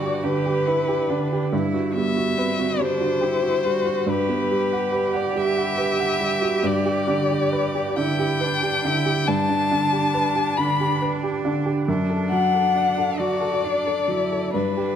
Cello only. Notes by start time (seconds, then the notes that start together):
Already playing: F#4
0.24 G4
0.67 E4
1.09 D4
1.52 E4
1.95 B3
2.37 C4
2.80 D4
3.23 E4
3.66 F#4
4.09 G4
7.96 E4
8.44 D4
8.87 E4
9.29 D4
11.89 D4
13.20 F#4
13.66 D4
14.11 E4
14.54 D4